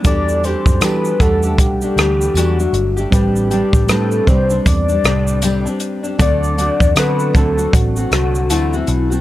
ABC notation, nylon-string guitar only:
X:1
M:4/4
L:1/16
Q:"Swing 16ths" 1/4=78
K:Em
V:1 name="Nylon-string guitar"
[E,A,DG]2 [E,A,DG]2 [E,A,DG]2 [E,A,DG] [A,DG]2 [A,DG] [E,A,DG]2 [E,A,DG] [A,D]2 [A,DG] | [A,,G,CD]2 [A,,G,CD]2 [A,,G,CD]2 [A,,G,CD] [G,CD]2 [G,CD] [A,,G,CD]2 [A,,G,CD] [G,CD]2 [G,CD] | [D,A,CF]2 [D,A,CF]2 [D,A,CF]2 [D,A,CF] [A,CF]2 [A,CF] [D,A,CF]2 [D,A,CF] [A,CF]2 [A,CF] |]